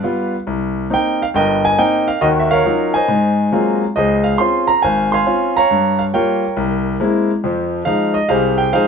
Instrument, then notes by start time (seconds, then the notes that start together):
grand piano
Already playing: B4 D5 F5
0.03 G3 B3 F4
0.47 C2
0.90 A#3 C4 D#4 G5
1.22 F5
1.34 G1 G2 A#4 D#5 G5
1.65 G#5
1.78 A#3 C4 D#4 G5
2.08 F5
2.21 D#2 D#3 F#4 A#4 D#5
2.40 E5
2.51 A#4 C#5 F5
2.66 F#3 C#4 D#4 F4
2.94 C5 D#5 G#5
3.08 G#2
3.52 F#3 G#3 A#3 C4 F4
3.96 C#2 G#4 C5 D#5
4.24 F5
4.38 C4 C#4 F4 C6
4.67 A#5
4.82 G#1 C5 F5 G#5
5.12 F5 G#5 C6
5.26 C4 C#4 F4
5.57 C#5 F5 A#5
5.71 G2
5.99 F5
6.14 G3 A#3 F4 A#4 C#5 G5
6.57 C2
7.00 G#3 A#3 C4 E4
7.44 F2 F3
7.85 F3 G#3 D#4 F5
8.14 D#5
8.29 C2 C3 G#4 C5 F5
8.58 G5
8.73 F3 G#3 D#4 G#4 C5 F5